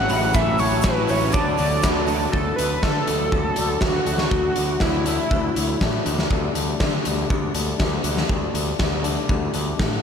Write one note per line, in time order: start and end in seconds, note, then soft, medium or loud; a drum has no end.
0.00 0.10 C#3 medium
0.00 0.10 F#3 medium
0.00 1.30 C#5 medium
0.00 0.12 A#5 medium
0.09 0.31 A1 medium
0.09 0.33 A2 medium
0.09 0.33 F#3 medium
0.09 0.34 C#4 medium
0.09 0.35 E4 medium
0.09 1.33 F#4 medium
0.09 1.33 E5 medium
0.09 0.36 F#5 loud
0.09 2.31 A5 medium
0.09 0.87 B5 loud
0.09 open hi-hat medium
0.09 shaker medium
0.33 0.56 A1 medium
0.33 0.83 A2 loud
0.33 0.59 F#3 loud
0.33 0.58 C#4 medium
0.33 0.58 E4 loud
0.33 0.61 E5 loud
0.33 kick loud
0.33 shaker medium
0.58 0.81 A1 medium
0.58 0.84 F#3 medium
0.58 0.84 C#4 medium
0.58 0.85 E4 medium
0.58 0.86 C#5 medium
0.58 open hi-hat medium
0.58 shaker medium
0.71 shaker soft
0.82 1.05 A1 loud
0.82 1.33 A2 medium
0.82 1.33 F#3 medium
0.82 1.33 C#4 medium
0.82 1.12 B4 medium
0.82 1.32 A5 medium
0.82 kick loud
0.82 snare loud
0.82 shaker loud
0.86 1.34 E4 medium
1.08 1.30 A1 loud
1.08 1.33 C#4 medium
1.08 1.33 C#5 medium
1.08 open hi-hat medium
1.08 shaker medium
1.20 shaker soft
1.32 1.55 D2 medium
1.32 1.83 D3 loud
1.32 1.59 F#3 loud
1.32 1.58 A3 loud
1.32 1.57 D4 loud
1.32 2.04 D5 medium
1.32 1.85 A5 medium
1.32 kick loud
1.32 shaker loud
1.37 2.34 F#4 medium
1.37 2.34 A4 medium
1.37 2.34 D5 medium
1.57 1.80 D2 loud
1.57 2.07 D3 medium
1.57 1.83 F#3 medium
1.57 1.84 A3 medium
1.57 1.84 D4 medium
1.57 open hi-hat medium
1.57 shaker medium
1.83 2.26 D2 loud
1.83 2.31 D3 medium
1.83 2.09 F#3 medium
1.83 2.08 A3 medium
1.83 2.07 D4 medium
1.83 2.07 B5 medium
1.83 kick loud
1.83 snare loud
1.83 shaker loud
2.07 2.33 D3 medium
2.07 2.32 F#3 medium
2.07 2.32 A3 medium
2.07 2.32 D4 medium
2.07 2.31 A5 medium
2.07 open hi-hat medium
2.07 shaker medium
2.21 shaker soft
2.32 2.52 D2 medium
2.32 2.81 D3 medium
2.32 2.59 F#3 medium
2.32 2.58 A3 medium
2.32 2.57 D4 medium
2.32 2.56 A4 loud
2.32 kick medium
2.56 2.76 D2 medium
2.56 2.82 F#3 medium
2.56 2.82 A3 medium
2.56 2.83 D4 medium
2.56 2.84 B4 loud
2.56 closed hi-hat medium
2.82 3.08 D3 medium
2.82 3.01 D3 medium
2.82 3.08 F#3 medium
2.82 3.07 A3 medium
2.82 3.06 D4 medium
2.82 3.83 A4 loud
2.82 kick loud
2.82 snare medium
3.07 3.27 D2 medium
3.07 3.31 D3 medium
3.07 3.31 F#3 medium
3.07 3.33 A3 medium
3.07 3.33 D4 medium
3.07 closed hi-hat medium
3.31 3.50 D2 medium
3.31 3.80 D3 medium
3.31 3.58 F#3 medium
3.31 3.58 A3 medium
3.31 3.56 D4 medium
3.31 kick medium
3.56 3.76 D2 medium
3.56 3.80 F#3 medium
3.56 3.82 A3 medium
3.56 3.82 D4 medium
3.56 closed hi-hat medium
3.81 4.00 D2 medium
3.81 4.30 D3 medium
3.81 4.07 F#3 loud
3.81 4.07 A3 medium
3.81 4.06 D4 medium
3.81 4.81 F#4 loud
3.81 kick loud
3.81 snare loud
4.06 4.25 D2 medium
4.06 4.30 F#3 soft
4.06 4.31 A3 medium
4.06 4.32 D4 medium
4.06 closed hi-hat medium
4.18 snare medium
4.30 4.50 D2 medium
4.30 4.81 D3 loud
4.30 4.57 F#3 medium
4.30 4.56 A3 loud
4.30 4.55 D4 loud
4.30 kick loud
4.56 4.75 D2 medium
4.56 4.81 F#3 medium
4.56 4.82 A3 medium
4.56 4.83 D4 medium
4.56 closed hi-hat medium
4.80 5.17 D2 medium
4.80 5.08 D3 medium
4.80 5.06 F#3 medium
4.80 5.06 A3 medium
4.80 5.06 D4 medium
4.80 6.02 E4 medium
4.80 kick medium
4.80 snare loud
5.06 5.30 D3 medium
5.06 5.30 F#3 medium
5.06 5.32 A3 medium
5.06 5.32 D4 medium
5.06 closed hi-hat medium
5.31 5.49 D2 medium
5.31 5.81 D3 medium
5.31 5.56 F#3 medium
5.31 5.56 A3 medium
5.31 5.54 D4 medium
5.31 kick loud
5.55 5.75 D2 medium
5.55 5.80 F#3 medium
5.55 5.82 A3 medium
5.55 5.83 D4 medium
5.55 closed hi-hat medium
5.81 5.99 A2 medium
5.81 6.30 D3 medium
5.81 6.06 F#3 medium
5.81 6.06 A3 medium
5.81 6.05 D4 loud
5.81 kick medium
5.81 snare loud
6.06 6.24 D2 medium
6.06 6.30 F#3 medium
6.06 6.32 A3 medium
6.06 6.32 D4 medium
6.06 closed hi-hat medium
6.18 snare medium
6.31 6.49 D2 medium
6.31 6.81 D3 medium
6.31 6.56 G3 medium
6.31 6.56 A3 medium
6.31 6.54 D4 medium
6.31 kick loud
6.55 6.74 D2 medium
6.55 6.81 G3 medium
6.55 6.82 A3 medium
6.55 6.83 D4 medium
6.55 closed hi-hat medium
6.80 6.98 D3 medium
6.80 7.07 D3 medium
6.80 7.06 G3 medium
6.80 7.06 A3 medium
6.80 7.05 D4 medium
6.80 kick medium
6.80 snare loud
7.05 7.24 D2 medium
7.05 7.29 D3 medium
7.05 7.29 G3 medium
7.05 7.31 A3 medium
7.05 7.31 D4 medium
7.05 closed hi-hat medium
7.30 7.48 D2 medium
7.30 7.79 D3 medium
7.30 7.55 G3 medium
7.30 7.55 A3 medium
7.30 7.54 D4 medium
7.30 kick loud
7.55 7.73 D2 medium
7.55 7.79 G3 medium
7.55 7.81 A3 medium
7.55 7.81 D4 medium
7.55 closed hi-hat medium
7.79 7.98 D2 medium
7.79 8.29 D3 medium
7.79 8.06 G3 medium
7.79 8.05 A3 loud
7.79 8.04 D4 loud
7.79 kick loud
7.79 snare loud
8.04 8.22 D2 medium
8.04 8.29 G3 medium
8.04 8.29 A3 medium
8.04 8.30 D4 medium
8.04 closed hi-hat medium
8.17 snare medium
8.29 8.48 D2 medium
8.29 8.78 D3 medium
8.29 8.55 G3 loud
8.29 8.54 A3 medium
8.29 8.53 D4 loud
8.29 kick loud
8.54 8.72 D2 medium
8.54 8.79 G3 medium
8.54 8.79 A3 medium
8.54 8.80 D4 medium
8.54 closed hi-hat medium
8.79 9.16 D2 medium
8.79 9.04 D3 medium
8.79 9.03 G3 medium
8.79 9.03 A3 medium
8.79 9.02 D4 medium
8.79 kick loud
8.79 snare medium
9.03 9.28 D3 medium
9.03 9.29 G3 medium
9.03 9.29 A3 medium
9.03 9.30 D4 medium
9.03 closed hi-hat medium
9.29 9.47 D2 medium
9.29 9.78 D3 medium
9.29 9.54 G3 medium
9.29 9.54 A3 medium
9.29 9.53 D4 medium
9.29 kick loud
9.54 9.72 D2 medium
9.54 9.79 G3 medium
9.54 9.80 A3 medium
9.54 9.80 D4 medium
9.54 closed hi-hat medium
9.79 9.97 A2 medium
9.79 10.02 D3 medium
9.79 10.02 G3 medium
9.79 10.02 A3 loud
9.79 10.02 D4 loud
9.79 kick medium
9.79 snare medium